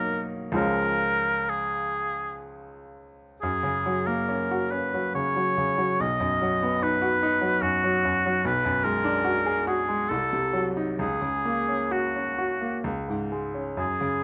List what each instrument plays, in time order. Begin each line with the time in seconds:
Already playing: grand piano B0 B1 F#3 A#3 D#4, oboe A#4
0.52 grand piano C#2 F3 G#3 C#4, oboe A#4
1.49 oboe G#4
3.41 grand piano F#2, oboe G#4
3.63 grand piano C#3
3.86 grand piano F#3
4.06 grand piano A#3, oboe A#4
4.29 grand piano C#4
4.51 grand piano F#4
4.71 grand piano C#4, oboe B4
4.94 grand piano F#3
5.15 grand piano C#3, oboe C#5
5.36 grand piano F#3
5.58 grand piano C#3
5.78 grand piano F#3
6.00 grand piano B1, oboe D#5
6.20 grand piano F#2
6.42 grand piano F#3
6.63 grand piano B3
6.82 grand piano D#4, oboe B4
7.02 grand piano F#4
7.23 grand piano D#4
7.41 grand piano F#3
7.62 grand piano F#2, oboe F#4
7.84 grand piano F#3
8.05 grand piano F#2
8.26 grand piano F#3
8.45 grand piano B1, oboe B4
8.65 grand piano F#2
8.84 grand piano G#3, oboe A#4
9.04 grand piano D4
9.24 grand piano F#4
9.46 grand piano G#4
9.67 grand piano F#4, oboe G#4
9.88 grand piano G#3
10.09 grand piano C2, oboe A4
10.33 grand piano C3
10.53 grand piano F#3
10.77 grand piano D#4
10.99 grand piano C#2, oboe G#4
11.22 grand piano C#3
11.45 grand piano A#3
11.69 grand piano C#4
11.91 grand piano F#4, oboe F#4
12.16 grand piano C#4
12.38 grand piano F#4
12.61 grand piano A#3
12.84 grand piano C#2
13.09 grand piano G#2
13.32 grand piano G#3
13.54 grand piano C#4
13.77 grand piano F#2, oboe G#4
14.01 grand piano C#3